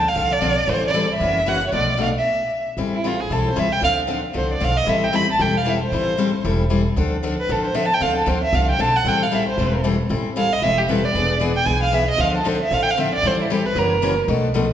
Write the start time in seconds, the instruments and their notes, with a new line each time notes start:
Already playing: upright bass D2
0.09 violin F5
0.15 upright bass C2, steel-string acoustic guitar D3 F3 C4 D4 A4
0.33 violin D5
0.41 upright bass B1, steel-string acoustic guitar D3 F3 C4 D4 A4
0.67 upright bass A1, steel-string acoustic guitar E3 G3 C4 E4 A4, violin C5
0.87 violin D5
0.94 steel-string acoustic guitar E3 G3 C4 E4 A4
1.15 violin E5
1.20 upright bass F#1, steel-string acoustic guitar C#3 E3 A#3 C#4 F#4
1.46 steel-string acoustic guitar C#3 E3 A#3 C#4 F#4, violin F#5
1.67 violin C#5
1.72 upright bass B1, steel-string acoustic guitar B2 F3 A3 D4 A4, violin D5
1.98 steel-string acoustic guitar B2 F3 A3 D4 A4
2.02 violin F5
2.18 violin E5
2.77 upright bass A1, steel-string acoustic guitar E3 G3 C4 E4 A4
2.95 violin E4
3.04 steel-string acoustic guitar E3 G3 C4 E4 A4, violin F4
3.21 violin G#4
3.30 upright bass B1, steel-string acoustic guitar E3 G3 C4 E4 A4, violin A4
3.49 violin C5
3.56 upright bass C2, steel-string acoustic guitar E3 G3 C4 E4 A4, violin E5
3.73 violin G5
3.82 upright bass D2, steel-string acoustic guitar D3 F3 C4 D4 A4, violin F5
4.07 steel-string acoustic guitar D3 F3 C4 D4 A4
4.33 upright bass C2, steel-string acoustic guitar D3 F3 C4 D4 A4, violin C5
4.53 violin D5
4.60 upright bass B1, steel-string acoustic guitar D3 F3 C4 D4 A4
4.65 violin F5
4.77 violin D#5
4.86 upright bass A1, steel-string acoustic guitar E3 G3 C4 E4 A4, violin E5
5.04 violin G5
5.12 steel-string acoustic guitar E3 G3 C4 E4 A4, violin B5
5.32 violin A5
5.39 upright bass E1, steel-string acoustic guitar E3 G3 C4 E4 A4, violin G5
5.58 violin F5
5.65 steel-string acoustic guitar E3 G3 C4 E4 A4
5.69 violin E5
5.83 violin C5
5.92 upright bass A1, steel-string acoustic guitar E3 G3 C4 E4 A4
6.18 steel-string acoustic guitar E3 G3 C4 E4 A4
6.44 upright bass E1, steel-string acoustic guitar E3 G3 C4 E4 A4
6.70 steel-string acoustic guitar E3 G3 C4 E4 A4
6.96 upright bass D2, steel-string acoustic guitar D3 F3 C4 D4 A4
7.23 steel-string acoustic guitar D3 F3 C4 D4 A4
7.40 violin B4
7.49 upright bass A1, steel-string acoustic guitar D3 F3 C4 D4 A4, violin A4
7.64 violin C5
7.74 steel-string acoustic guitar D3 F3 C4 D4 A4, violin E5
7.86 violin A5
7.94 violin G5
8.00 upright bass D2, steel-string acoustic guitar D3 F3 C4 D4 A4, violin F5
8.17 violin A4
8.26 upright bass D2, steel-string acoustic guitar D3 F3 C4 D4 A4, violin C5
8.44 violin E5
8.53 upright bass C2, steel-string acoustic guitar D3 F3 C4 D4 A4, violin F5
8.70 violin G5
8.79 upright bass B1, steel-string acoustic guitar D3 F3 C4 D4 A4, violin A5
8.96 violin F#5
9.04 upright bass A1, steel-string acoustic guitar E3 G3 C4 E4 A4
9.08 violin G5
9.23 violin F5
9.32 steel-string acoustic guitar E3 G3 C4 E4 A4, violin E5
9.49 violin C5
9.57 upright bass E1, steel-string acoustic guitar E3 G3 C4 E4 A4
9.84 steel-string acoustic guitar E3 G3 C4 E4 A4
10.09 upright bass A1, steel-string acoustic guitar E3 G3 C4 E4 A4
10.36 steel-string acoustic guitar E3 G3 C4 E4 A4, violin F5
10.53 violin D#5
10.62 upright bass E1, steel-string acoustic guitar E3 G3 C4 E4 A4, violin E5
10.78 violin G4
10.88 steel-string acoustic guitar E3 G3 C4 E4 A4, violin B4
11.05 violin D5
11.15 upright bass E1, steel-string acoustic guitar E3 B3 D4 G#4
11.40 steel-string acoustic guitar E3 B3 D4 G#4
11.56 violin G5
11.65 upright bass B1, steel-string acoustic guitar E3 B3 D4 G#4, violin G#5
11.83 violin F5
11.92 steel-string acoustic guitar E3 B3 D4 G#4, violin E5
12.10 violin D#5
12.18 upright bass D2, steel-string acoustic guitar D3 F3 C4 D4 A4, violin F5
12.37 violin A4
12.44 steel-string acoustic guitar D3 F3 C4 D4 A4, violin C5
12.62 violin E5
12.71 upright bass A1, steel-string acoustic guitar D3 F3 C4 D4 A4, violin F5
12.83 violin G5
12.91 violin F5
12.97 steel-string acoustic guitar D3 F3 C4 D4 A4, violin E5
13.15 violin D5
13.23 upright bass A1, steel-string acoustic guitar E3 G3 C4 E4 A4
13.27 violin C5
13.42 violin E4
13.50 steel-string acoustic guitar E3 G3 C4 E4 A4, violin G4
13.66 violin B4
13.75 upright bass F#1, steel-string acoustic guitar C#3 E3 A#3 C#4 F#4, violin A#4
14.02 steel-string acoustic guitar C#3 E3 A#3 C#4 F#4
14.28 upright bass B1, steel-string acoustic guitar B2 F3 A3 D4 A4
14.54 steel-string acoustic guitar B2 F3 A3 D4 A4